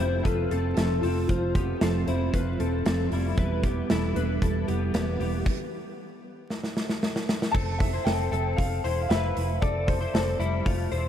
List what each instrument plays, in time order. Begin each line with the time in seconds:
0.00 fingered electric bass F1, steel-string acoustic guitar A3 C4 F4, clean electric guitar E4 C5
0.23 fingered electric bass F1, steel-string acoustic guitar F3 A3 C4 F4, clean electric guitar F4 B4, upright piano A4, kick, closed hi-hat
0.51 fingered electric bass F1, steel-string acoustic guitar A3 C4 F4, clean electric guitar C4 A4, closed hi-hat
0.74 fingered electric bass F1, steel-string acoustic guitar F3 A3 C4, upright piano A4, clean electric guitar A4, snare, closed hi-hat
0.78 clean electric guitar C4, steel-string acoustic guitar F4
1.01 fingered electric bass F1, steel-string acoustic guitar C4 F4, clean electric guitar C4 A4, upright piano F4, open hi-hat
1.05 steel-string acoustic guitar A3
1.27 fingered electric bass F1, steel-string acoustic guitar F3 A3 C4 F4, upright piano F4, clean electric guitar F4 C5, kick, closed hi-hat
1.55 steel-string acoustic guitar A3 C4 F4, clean electric guitar B3 G4, kick, closed hi-hat
1.81 fingered electric bass F1, steel-string acoustic guitar F3 A3 C4 F4, clean electric guitar C4 A4, snare, closed hi-hat
2.07 fingered electric bass F1, steel-string acoustic guitar A3 C4 F4, clean electric guitar E4 C5, closed hi-hat
2.33 fingered electric bass F1, steel-string acoustic guitar F3 A3 C4 F4, clean electric guitar F4 B4, kick, closed hi-hat
2.59 fingered electric bass E1, steel-string acoustic guitar A3 C4 F4, clean electric guitar C4 A4, closed hi-hat
2.85 fingered electric bass F1, steel-string acoustic guitar F3 A3 C4 F4, clean electric guitar C4 A4, snare, closed hi-hat
3.11 fingered electric bass F1, clean electric guitar G3 E4, steel-string acoustic guitar A3 C4 F4, open hi-hat
3.37 fingered electric bass E1, steel-string acoustic guitar E3 G3 B3 E4, clean electric guitar E4 B4, kick, closed hi-hat
3.63 steel-string acoustic guitar G3 B3 E4, clean electric guitar B3 G4, kick, closed hi-hat
3.90 fingered electric bass E1, steel-string acoustic guitar E3 G3 B3 E4, clean electric guitar E4 A4, snare, closed hi-hat
4.15 fingered electric bass E1, steel-string acoustic guitar G3 B3 E4, clean electric guitar D4 B4, closed hi-hat
4.41 fingered electric bass E1, steel-string acoustic guitar E3 G3 B3 E4, clean electric guitar E4 A4, kick, closed hi-hat
4.68 fingered electric bass F1, steel-string acoustic guitar G3 B3 E4, clean electric guitar B3 G4, closed hi-hat
4.94 fingered electric bass E1, steel-string acoustic guitar E3 G3 B3 E4, clean electric guitar B3 G4, snare, closed hi-hat
5.20 fingered electric bass E1, steel-string acoustic guitar G3 B3 E4, clean electric guitar B3 G4, open hi-hat
5.46 kick, crash
6.50 snare
6.64 snare
6.77 snare
6.89 snare
7.03 snare
7.16 snare
7.29 snare
7.42 snare
7.51 fingered electric bass F1, clean electric guitar C4 A4, upright piano A5, kick, crash
7.79 upright piano E5, kick, hi-hat pedal, open hi-hat
7.93 clean electric guitar E4 C5
8.04 fingered electric bass F1, clean electric guitar C4 A4, upright piano G5, snare, hi-hat pedal, open hi-hat
8.32 fingered electric bass F1, clean electric guitar C4 A4, hi-hat pedal, open hi-hat
8.57 fingered electric bass F1, upright piano F5, kick, hi-hat pedal, open hi-hat
8.84 fingered electric bass E1, clean electric guitar E4 C5, hi-hat pedal, open hi-hat
9.01 upright piano F5
9.09 fingered electric bass F1, clean electric guitar E4 B4, upright piano E5, snare, hi-hat pedal, open hi-hat
9.36 fingered electric bass F1, hi-hat pedal, open hi-hat
9.62 fingered electric bass F1, clean electric guitar C4 A4, upright piano D5, kick, hi-hat pedal, open hi-hat
9.87 upright piano C5, kick, hi-hat pedal, open hi-hat
10.01 clean electric guitar E4 C5
10.14 fingered electric bass F1, clean electric guitar C4 A4, snare, hi-hat pedal, open hi-hat
10.39 fingered electric bass F1, clean electric guitar G3 E4, hi-hat pedal, open hi-hat
10.66 fingered electric bass F1, clean electric guitar A3 F4, kick, hi-hat pedal, open hi-hat
10.92 fingered electric bass E1, clean electric guitar E4 C5, hi-hat pedal, open hi-hat